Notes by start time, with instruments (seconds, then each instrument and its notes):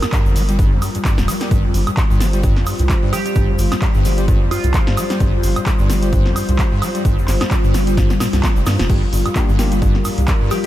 Already playing: analog synth pad G3 F4 A#4
0.02 acid bass G2, snare, closed hi-hat, high woodblock, shaker
0.12 acid bass G2, kick, clap, closed hi-hat, shaker
0.26 sub bass G1, acid bass F2, shaker
0.36 acid bass G3, open hi-hat, shaker
0.49 acid bass G3, closed hi-hat, shaker
0.59 acid bass G2, kick, closed hi-hat, shaker
0.72 acid bass F2
0.82 acid bass G2, open hi-hat, high woodblock, shaker
0.95 acid bass G2, closed hi-hat, shaker
1.05 acid bass G2, kick, clap, closed hi-hat, shaker
1.18 sub bass D1, acid bass F2, snare, shaker
1.28 acid bass G3, open hi-hat, high woodblock, shaker
1.40 acid bass G3, snare, closed hi-hat, shaker
1.51 sub bass G1, acid bass G2, analog synth pad C5, kick, closed hi-hat, shaker
1.64 acid bass F2
1.74 sub bass G1, acid bass G2, open hi-hat, shaker
1.87 acid bass G2, closed hi-hat, high woodblock, shaker
1.97 acid bass G2, kick, clap, closed hi-hat, shaker
2.10 sub bass G1, acid bass G2, shaker
2.20 acid bass G3, snare, open hi-hat, shaker
2.33 acid bass G3, closed hi-hat, shaker
2.43 acid bass G2, kick, closed hi-hat, shaker
2.56 acid bass F2, snare
2.66 acid bass G2, open hi-hat, high woodblock, shaker
2.78 sub bass C2, acid bass G2, closed hi-hat, shaker
2.89 acid bass G2, kick, clap, closed hi-hat, shaker
3.03 acid bass G2
3.13 acid bass G3, synth pluck G4, open hi-hat, high woodblock, shaker
3.26 acid bass G3, synth pluck G4, closed hi-hat, shaker
3.35 sub bass G1, acid bass G2, kick, closed hi-hat, shaker
3.49 acid bass F2
3.58 sub bass G1, acid bass G2, open hi-hat, shaker
3.72 acid bass G2, snare, closed hi-hat, high woodblock, shaker
3.82 acid bass G2, kick, clap, closed hi-hat, shaker
3.94 sub bass G1, acid bass G2, shaker
4.05 acid bass G3, open hi-hat, shaker
4.17 acid bass G3, closed hi-hat, shaker
4.28 acid bass G2, kick, closed hi-hat, shaker
4.41 acid bass F2
4.51 acid bass G2, synth pluck F4, open hi-hat, high woodblock, shaker
4.64 sub bass C2, acid bass G2, closed hi-hat, shaker
4.74 acid bass G2, kick, clap, closed hi-hat, shaker
4.87 acid bass G2, snare
4.97 acid bass G3, open hi-hat, high woodblock, shaker
5.10 acid bass G3, snare, closed hi-hat, shaker
5.20 sub bass G1, acid bass G2, kick, closed hi-hat, shaker
5.33 acid bass F2
5.43 sub bass G1, acid bass G2, open hi-hat, shaker
5.56 acid bass G2, closed hi-hat, high woodblock, shaker
5.66 acid bass G2, kick, clap, closed hi-hat, shaker
5.79 sub bass G1, acid bass G2, shaker
5.90 acid bass G3, snare, open hi-hat, shaker
6.03 acid bass G3, closed hi-hat, shaker
6.13 acid bass G2, kick, closed hi-hat, shaker
6.26 acid bass F2, snare
6.36 acid bass G2, open hi-hat, high woodblock, shaker
6.48 sub bass C2, acid bass G2, closed hi-hat, shaker
6.59 acid bass G2, kick, clap, closed hi-hat, shaker
6.72 acid bass G2
6.82 acid bass G3, open hi-hat, high woodblock, shaker
6.95 acid bass G3, closed hi-hat, shaker
7.05 sub bass G1, acid bass G2, kick, closed hi-hat, shaker
7.18 acid bass F2, shaker
7.28 sub bass G1, acid bass G2, snare, clap, open hi-hat, shaker
7.41 acid bass G2, snare, closed hi-hat, high woodblock, shaker
7.51 acid bass G2, kick, clap, closed hi-hat, shaker
7.64 sub bass G1, acid bass G2, shaker
7.74 acid bass G3, snare, open hi-hat, shaker
7.87 acid bass G3, closed hi-hat, shaker
7.97 acid bass G2, kick, snare, closed hi-hat, shaker
8.10 acid bass F2, snare, shaker
8.20 acid bass A#2, snare, open hi-hat, high woodblock, shaker
8.33 sub bass C2, acid bass G2, snare, closed hi-hat, shaker
8.43 acid bass A#3, kick, snare, clap, closed hi-hat, shaker
8.56 sub bass F1, acid bass G3, shaker
8.66 sub bass G2, acid bass D3, snare, open hi-hat, high woodblock, shaker
8.79 sub bass F1, acid bass F2, snare, closed hi-hat, shaker
8.89 sub bass G1, acid bass G2, analog synth pad A#4, kick, closed hi-hat, crash, shaker
9.02 acid bass F2
9.13 sub bass G1, acid bass G2, open hi-hat, shaker
9.26 acid bass G2, closed hi-hat, high woodblock, shaker
9.35 acid bass G2, tine electric piano A#3 D4 F4 G4, kick, clap, closed hi-hat, shaker
9.49 sub bass G1, acid bass G2, shaker
9.59 acid bass G3, tine electric piano A#3 D4 F4 G4, snare, open hi-hat, shaker
9.72 acid bass G3, closed hi-hat, shaker
9.82 acid bass G2, kick, closed hi-hat, shaker
9.95 acid bass F2, snare
10.05 acid bass G2, open hi-hat, high woodblock, shaker
10.18 sub bass C2, acid bass G2, closed hi-hat, shaker
10.28 acid bass G2, kick, clap, closed hi-hat, shaker
10.41 acid bass G2
10.51 acid bass G3, synth pluck G4, open hi-hat, high woodblock, shaker